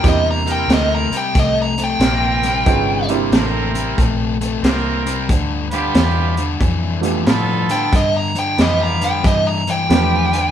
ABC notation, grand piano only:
X:1
M:4/4
L:1/8
Q:"Swing" 1/4=91
K:Cmix
V:1 name="Grand piano"
[B,CDEG]3 z4 z | [=B,_D_EF_A] [_B,C=D=EG]2 z4 z | z4 z [A,=B,DFG] z2 | z6 [A,=B,DFG] z |]